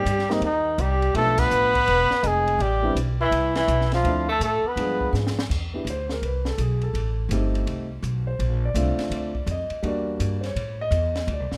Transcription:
Already playing: tenor saxophone G3, trumpet G4
0.05 upright bass G2, hi-hat pedal, ride
0.19 snare
0.29 tenor saxophone D#3, grand piano G#3 A#3 C4 D#4 G4, trumpet D#4, snare
0.41 upright bass D#2, tenor saxophone D#3, ride
0.45 trumpet D#4
0.78 upright bass C2, tenor saxophone G3, trumpet G4, hi-hat pedal, ride
1.02 ride
1.14 upright bass B1, grand piano F3 A3 B3 D4 F4, tenor saxophone A3, trumpet A4, ride
1.38 tenor saxophone B3, trumpet B4, kick, crash
1.51 upright bass A1, hi-hat pedal
1.75 kick, ride
1.87 upright bass E1, ride
2.11 snare
2.23 upright bass F1, tenor saxophone G#3, trumpet G#4, hi-hat pedal, ride
2.48 ride
2.59 upright bass A1, tenor saxophone G3, trumpet G4, ride
2.82 grand piano G3 B3 C4 D4 E4
2.95 upright bass B1, hi-hat pedal, ride
3.21 tenor saxophone E3, trumpet E4
3.31 upright bass C2, ride
3.55 tenor saxophone E3, trumpet E4, snare, ride
3.68 upright bass B1, hi-hat pedal, ride
3.81 snare
3.92 tenor saxophone F3, trumpet F4, snare, ride
4.04 upright bass D2, grand piano F3 A3 C4 D4 E4, ride
4.29 tenor saxophone A3, trumpet A4
4.40 upright bass A2, tenor saxophone A3, hi-hat pedal, ride
4.44 trumpet A4
4.63 tenor saxophone B3, muted upright bass stroke
4.68 trumpet B4
4.76 upright bass G2, grand piano F3 G#3 B3 D4 G#4, ride
5.01 kick
5.13 upright bass G#2, snare, hi-hat pedal
5.27 snare
5.39 snare
5.50 upright bass E2, kick, crash
5.73 grand piano B3 D4 E4 G4
5.85 upright bass D2, hi-hat pedal, ride
5.90 grand piano C5
6.09 grand piano A#4, snare
6.22 upright bass C2, grand piano B4, ride
6.45 grand piano A4, snare
6.58 upright bass B1, grand piano G#4, hi-hat pedal, ride
6.81 grand piano A4, ride
6.94 upright bass A1, ride
7.29 upright bass G1, grand piano A3 C4 D#4 G4, hi-hat pedal, ride
7.55 ride
7.67 upright bass C2, ride
8.02 upright bass B1, hi-hat pedal, ride
8.27 grand piano C5
8.39 upright bass A#1, ride
8.65 grand piano D5
8.74 upright bass C2, grand piano A3 C4 D4 F4, hi-hat pedal, ride
8.98 muted upright bass stroke, snare, ride
9.10 upright bass D2, ride
9.16 grand piano D5
9.35 kick
9.46 upright bass F2, hi-hat pedal, ride
9.51 grand piano D#5
9.70 muted upright bass stroke, ride
9.82 upright bass E2, grand piano G3 A#3 D4 F#4, ride
9.87 grand piano D5
10.20 upright bass G2, hi-hat pedal, ride
10.41 grand piano C5, snare, ride
10.46 grand piano C#5
10.56 upright bass A2, ride
10.81 grand piano D#5
10.91 upright bass E2, hi-hat pedal, ride
11.15 snare, ride
11.27 upright bass D2, ride
11.33 grand piano D5
11.40 upright bass C2
11.52 upright bass A1, snare

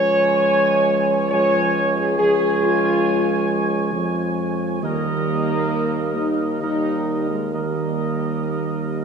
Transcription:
Already playing: tuba C#2, trombone section F3 G#3, trumpet section C#5 G#5, french horn section C#5
1.29 trombone section F3 G#3, french horn section C#5, trumpet section C#5 G#5
1.96 french horn section G#4
2.17 trombone section F3 G#3, french horn section G#4, trumpet section C#5 G#5
2.62 french horn section F4
3.93 tuba F2
4.81 tuba D#2, trombone section D#3 G3, french horn section A#3, trumpet section A#4 D#5
6.16 french horn section D#4
6.60 trombone section D#3 G3, french horn section D#4, trumpet section A#4 D#5
7.30 french horn section G#3
7.52 trombone section D#3 G3, french horn section A#3, trumpet section A#4 D#5

